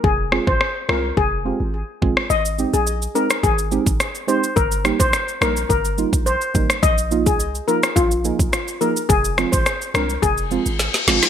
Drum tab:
SH |----------------|xxxxxxxxxxxxxxxx|xxxxxxxxxxxxxxxx|xxxxxxxxxxxxxxxx|
SD |--r-r-r--------r|-------r----r---|--r-r-r--------r|-------r----r---|
BD |o--o----o-----o-|--------o--o----|o--o----o--o--o-|o--o----o--o----|

SH |xxxxxxxxxxxxxxxx|
SD |--r-r-r-----oooo|
BD |o--o----o-------|